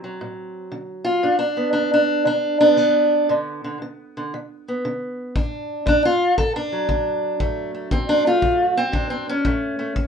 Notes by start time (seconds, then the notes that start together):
Already playing: D3 C4
0.04 F#3
0.21 A2
0.72 D3
1.04 F4
1.23 G2 D4
1.39 D4
1.57 B3
1.73 D3 D4
1.94 D4
2.25 D3 D4
2.60 B3 D4
2.76 D3 B3
3.29 G2 D3
3.64 D3
3.82 D3
4.17 D3
4.34 D3
4.68 B3
4.85 D3
5.36 D2 D4, kick
5.86 D3 D4, kick
6.05 F4
6.38 A2 A4, kick
6.56 D4
6.72 F#3
6.89 D3, kick
7.40 D2 A3, kick
7.74 A3
7.91 D3 C4, kick
8.09 D4
8.26 A3 F4
8.42 A2, kick
8.77 C4
8.92 D3 D4, kick
9.10 C4
9.29 C#4
9.45 A2 A3, kick
9.79 A3
9.96 A3, kick